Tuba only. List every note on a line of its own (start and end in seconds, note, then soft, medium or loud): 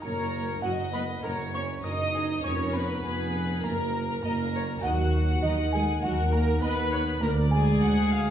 0.03 0.56 F#1 medium
0.64 1.17 F#1 medium
1.24 1.77 F#1 medium
1.84 2.38 F#1 medium
2.44 2.97 F1 medium
3.05 3.57 F1 medium
3.64 4.17 F#1 medium
4.24 4.77 F#1 medium
4.84 5.37 D#2 medium
5.43 5.96 D#2 medium
6.03 6.56 D#2 medium
6.62 7.06 D#2 medium
7.21 7.74 D2 medium
7.81 8.30 D2 medium